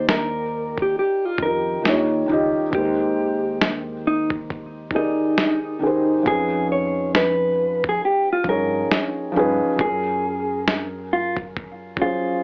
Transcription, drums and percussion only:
0, 0, Header, 1, 2, 480
1, 0, Start_track
1, 0, Tempo, 882353
1, 1485, Time_signature, 4, 2, 24, 8
1, 6764, End_track
2, 0, Start_track
2, 0, Title_t, "Drums"
2, 48, Note_on_c, 9, 38, 110
2, 102, Note_off_c, 9, 38, 0
2, 422, Note_on_c, 9, 36, 100
2, 476, Note_off_c, 9, 36, 0
2, 751, Note_on_c, 9, 36, 91
2, 805, Note_off_c, 9, 36, 0
2, 1008, Note_on_c, 9, 38, 100
2, 1062, Note_off_c, 9, 38, 0
2, 1484, Note_on_c, 9, 36, 120
2, 1539, Note_off_c, 9, 36, 0
2, 1967, Note_on_c, 9, 38, 111
2, 2021, Note_off_c, 9, 38, 0
2, 2341, Note_on_c, 9, 36, 107
2, 2396, Note_off_c, 9, 36, 0
2, 2450, Note_on_c, 9, 36, 95
2, 2504, Note_off_c, 9, 36, 0
2, 2670, Note_on_c, 9, 36, 89
2, 2724, Note_off_c, 9, 36, 0
2, 2926, Note_on_c, 9, 38, 111
2, 2981, Note_off_c, 9, 38, 0
2, 3405, Note_on_c, 9, 36, 114
2, 3460, Note_off_c, 9, 36, 0
2, 3888, Note_on_c, 9, 38, 118
2, 3942, Note_off_c, 9, 38, 0
2, 4263, Note_on_c, 9, 36, 100
2, 4318, Note_off_c, 9, 36, 0
2, 4593, Note_on_c, 9, 36, 91
2, 4647, Note_off_c, 9, 36, 0
2, 4850, Note_on_c, 9, 38, 109
2, 4904, Note_off_c, 9, 38, 0
2, 5327, Note_on_c, 9, 36, 117
2, 5381, Note_off_c, 9, 36, 0
2, 5809, Note_on_c, 9, 38, 116
2, 5863, Note_off_c, 9, 38, 0
2, 6183, Note_on_c, 9, 36, 102
2, 6238, Note_off_c, 9, 36, 0
2, 6293, Note_on_c, 9, 36, 80
2, 6347, Note_off_c, 9, 36, 0
2, 6512, Note_on_c, 9, 36, 95
2, 6566, Note_off_c, 9, 36, 0
2, 6764, End_track
0, 0, End_of_file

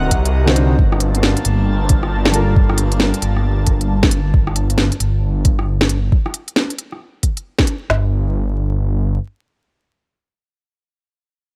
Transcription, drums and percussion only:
0, 0, Header, 1, 2, 480
1, 0, Start_track
1, 0, Key_signature, -2, "minor"
1, 0, Tempo, 444444
1, 840, Time_signature, 4, 2, 24, 8
1, 12479, End_track
2, 0, Start_track
2, 0, Title_t, "Drums"
2, 121, Note_on_c, 9, 42, 57
2, 125, Note_on_c, 9, 36, 63
2, 229, Note_off_c, 9, 42, 0
2, 233, Note_off_c, 9, 36, 0
2, 275, Note_on_c, 9, 42, 32
2, 383, Note_off_c, 9, 42, 0
2, 513, Note_on_c, 9, 40, 105
2, 606, Note_on_c, 9, 42, 56
2, 621, Note_off_c, 9, 40, 0
2, 714, Note_off_c, 9, 42, 0
2, 851, Note_on_c, 9, 36, 118
2, 959, Note_off_c, 9, 36, 0
2, 998, Note_on_c, 9, 37, 59
2, 1084, Note_on_c, 9, 42, 56
2, 1106, Note_off_c, 9, 37, 0
2, 1192, Note_off_c, 9, 42, 0
2, 1238, Note_on_c, 9, 42, 31
2, 1328, Note_on_c, 9, 40, 100
2, 1346, Note_off_c, 9, 42, 0
2, 1436, Note_off_c, 9, 40, 0
2, 1476, Note_on_c, 9, 42, 31
2, 1564, Note_off_c, 9, 42, 0
2, 1564, Note_on_c, 9, 42, 55
2, 1672, Note_off_c, 9, 42, 0
2, 2043, Note_on_c, 9, 42, 54
2, 2052, Note_on_c, 9, 36, 104
2, 2151, Note_off_c, 9, 42, 0
2, 2160, Note_off_c, 9, 36, 0
2, 2193, Note_on_c, 9, 37, 52
2, 2301, Note_off_c, 9, 37, 0
2, 2435, Note_on_c, 9, 40, 106
2, 2523, Note_on_c, 9, 42, 53
2, 2543, Note_off_c, 9, 40, 0
2, 2631, Note_off_c, 9, 42, 0
2, 2769, Note_on_c, 9, 36, 118
2, 2877, Note_off_c, 9, 36, 0
2, 2911, Note_on_c, 9, 37, 57
2, 2999, Note_on_c, 9, 42, 58
2, 3019, Note_off_c, 9, 37, 0
2, 3107, Note_off_c, 9, 42, 0
2, 3150, Note_on_c, 9, 42, 31
2, 3237, Note_on_c, 9, 40, 103
2, 3258, Note_off_c, 9, 42, 0
2, 3345, Note_off_c, 9, 40, 0
2, 3390, Note_on_c, 9, 42, 31
2, 3479, Note_off_c, 9, 42, 0
2, 3479, Note_on_c, 9, 42, 54
2, 3587, Note_off_c, 9, 42, 0
2, 3634, Note_on_c, 9, 37, 34
2, 3742, Note_off_c, 9, 37, 0
2, 3959, Note_on_c, 9, 42, 55
2, 3966, Note_on_c, 9, 36, 62
2, 4067, Note_off_c, 9, 42, 0
2, 4074, Note_off_c, 9, 36, 0
2, 4115, Note_on_c, 9, 42, 30
2, 4223, Note_off_c, 9, 42, 0
2, 4352, Note_on_c, 9, 40, 106
2, 4358, Note_on_c, 9, 36, 99
2, 4441, Note_on_c, 9, 42, 53
2, 4460, Note_off_c, 9, 40, 0
2, 4466, Note_off_c, 9, 36, 0
2, 4549, Note_off_c, 9, 42, 0
2, 4686, Note_on_c, 9, 36, 116
2, 4794, Note_off_c, 9, 36, 0
2, 4830, Note_on_c, 9, 37, 56
2, 4922, Note_on_c, 9, 42, 54
2, 4938, Note_off_c, 9, 37, 0
2, 5030, Note_off_c, 9, 42, 0
2, 5074, Note_on_c, 9, 42, 30
2, 5159, Note_on_c, 9, 40, 105
2, 5182, Note_off_c, 9, 42, 0
2, 5267, Note_off_c, 9, 40, 0
2, 5312, Note_on_c, 9, 42, 29
2, 5403, Note_off_c, 9, 42, 0
2, 5403, Note_on_c, 9, 42, 52
2, 5511, Note_off_c, 9, 42, 0
2, 5885, Note_on_c, 9, 42, 53
2, 5889, Note_on_c, 9, 36, 104
2, 5993, Note_off_c, 9, 42, 0
2, 5997, Note_off_c, 9, 36, 0
2, 6036, Note_on_c, 9, 37, 47
2, 6144, Note_off_c, 9, 37, 0
2, 6274, Note_on_c, 9, 40, 105
2, 6365, Note_on_c, 9, 42, 52
2, 6382, Note_off_c, 9, 40, 0
2, 6473, Note_off_c, 9, 42, 0
2, 6612, Note_on_c, 9, 36, 112
2, 6720, Note_off_c, 9, 36, 0
2, 6759, Note_on_c, 9, 37, 53
2, 6846, Note_on_c, 9, 42, 51
2, 6867, Note_off_c, 9, 37, 0
2, 6954, Note_off_c, 9, 42, 0
2, 6996, Note_on_c, 9, 42, 28
2, 7086, Note_on_c, 9, 40, 98
2, 7104, Note_off_c, 9, 42, 0
2, 7194, Note_off_c, 9, 40, 0
2, 7239, Note_on_c, 9, 42, 28
2, 7328, Note_off_c, 9, 42, 0
2, 7328, Note_on_c, 9, 42, 48
2, 7436, Note_off_c, 9, 42, 0
2, 7478, Note_on_c, 9, 37, 31
2, 7586, Note_off_c, 9, 37, 0
2, 7809, Note_on_c, 9, 42, 49
2, 7812, Note_on_c, 9, 36, 60
2, 7917, Note_off_c, 9, 42, 0
2, 7920, Note_off_c, 9, 36, 0
2, 7960, Note_on_c, 9, 42, 28
2, 8068, Note_off_c, 9, 42, 0
2, 8193, Note_on_c, 9, 40, 98
2, 8202, Note_on_c, 9, 36, 96
2, 8286, Note_on_c, 9, 42, 49
2, 8301, Note_off_c, 9, 40, 0
2, 8310, Note_off_c, 9, 36, 0
2, 8394, Note_off_c, 9, 42, 0
2, 8531, Note_on_c, 9, 38, 93
2, 8639, Note_off_c, 9, 38, 0
2, 12479, End_track
0, 0, End_of_file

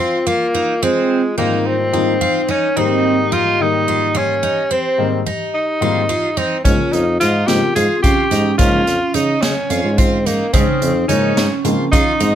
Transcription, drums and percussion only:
0, 0, Header, 1, 2, 480
1, 0, Start_track
1, 0, Key_signature, -4, "major"
1, 0, Tempo, 555042
1, 713, Time_signature, 7, 3, 24, 8
1, 10680, End_track
2, 0, Start_track
2, 0, Title_t, "Drums"
2, 5752, Note_on_c, 9, 36, 98
2, 5752, Note_on_c, 9, 42, 74
2, 5838, Note_off_c, 9, 36, 0
2, 5839, Note_off_c, 9, 42, 0
2, 5994, Note_on_c, 9, 42, 56
2, 6081, Note_off_c, 9, 42, 0
2, 6233, Note_on_c, 9, 42, 60
2, 6320, Note_off_c, 9, 42, 0
2, 6470, Note_on_c, 9, 38, 102
2, 6470, Note_on_c, 9, 42, 76
2, 6556, Note_off_c, 9, 38, 0
2, 6556, Note_off_c, 9, 42, 0
2, 6711, Note_on_c, 9, 42, 60
2, 6797, Note_off_c, 9, 42, 0
2, 6952, Note_on_c, 9, 36, 99
2, 6952, Note_on_c, 9, 42, 78
2, 7038, Note_off_c, 9, 42, 0
2, 7039, Note_off_c, 9, 36, 0
2, 7195, Note_on_c, 9, 38, 33
2, 7195, Note_on_c, 9, 42, 62
2, 7281, Note_off_c, 9, 38, 0
2, 7281, Note_off_c, 9, 42, 0
2, 7431, Note_on_c, 9, 42, 74
2, 7432, Note_on_c, 9, 36, 106
2, 7517, Note_off_c, 9, 42, 0
2, 7519, Note_off_c, 9, 36, 0
2, 7672, Note_on_c, 9, 38, 31
2, 7672, Note_on_c, 9, 42, 56
2, 7759, Note_off_c, 9, 38, 0
2, 7759, Note_off_c, 9, 42, 0
2, 7914, Note_on_c, 9, 42, 60
2, 8001, Note_off_c, 9, 42, 0
2, 8152, Note_on_c, 9, 38, 107
2, 8152, Note_on_c, 9, 42, 84
2, 8238, Note_off_c, 9, 38, 0
2, 8238, Note_off_c, 9, 42, 0
2, 8394, Note_on_c, 9, 42, 60
2, 8480, Note_off_c, 9, 42, 0
2, 8634, Note_on_c, 9, 36, 100
2, 8637, Note_on_c, 9, 42, 82
2, 8721, Note_off_c, 9, 36, 0
2, 8723, Note_off_c, 9, 42, 0
2, 8877, Note_on_c, 9, 42, 68
2, 8964, Note_off_c, 9, 42, 0
2, 9113, Note_on_c, 9, 36, 110
2, 9115, Note_on_c, 9, 42, 81
2, 9200, Note_off_c, 9, 36, 0
2, 9201, Note_off_c, 9, 42, 0
2, 9356, Note_on_c, 9, 42, 63
2, 9442, Note_off_c, 9, 42, 0
2, 9595, Note_on_c, 9, 42, 60
2, 9681, Note_off_c, 9, 42, 0
2, 9835, Note_on_c, 9, 38, 114
2, 9835, Note_on_c, 9, 42, 84
2, 9922, Note_off_c, 9, 38, 0
2, 9922, Note_off_c, 9, 42, 0
2, 10075, Note_on_c, 9, 42, 60
2, 10162, Note_off_c, 9, 42, 0
2, 10314, Note_on_c, 9, 36, 107
2, 10315, Note_on_c, 9, 42, 81
2, 10400, Note_off_c, 9, 36, 0
2, 10402, Note_off_c, 9, 42, 0
2, 10555, Note_on_c, 9, 42, 60
2, 10641, Note_off_c, 9, 42, 0
2, 10680, End_track
0, 0, End_of_file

